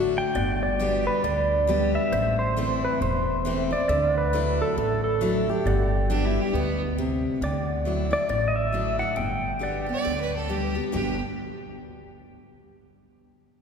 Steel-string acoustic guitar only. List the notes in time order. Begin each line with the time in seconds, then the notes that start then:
Already playing: A2 D3 A3 D4 F#4
0.35 G2
0.80 D3 G3 B3 G4
1.24 D3
1.67 D3 G3 B3 G4
2.13 A2
2.57 E3 A3 C4 E4
3.02 E2
3.45 E3 A3 C4 E4
3.71 C4 E4
3.89 D3
4.33 F#3 A3 D4 E4
4.78 A2
5.21 F#3 A3 D4 E4
5.49 D4 E4
5.67 G2
6.10 D3 G3 B3 G4
6.55 B2
6.98 C3
7.42 D3
7.85 F#3 A3 D4 E4
8.11 D4 E4
8.29 A2
8.73 F#3 A3 D4 E4
8.99 D4 E4
9.16 G2
9.59 D3 G3 B3 G4
9.86 B3 G4
10.05 D3
10.49 D3 G3 B3 G4
10.75 B3 G4
10.92 G2 B2 D3 G3 B3 G4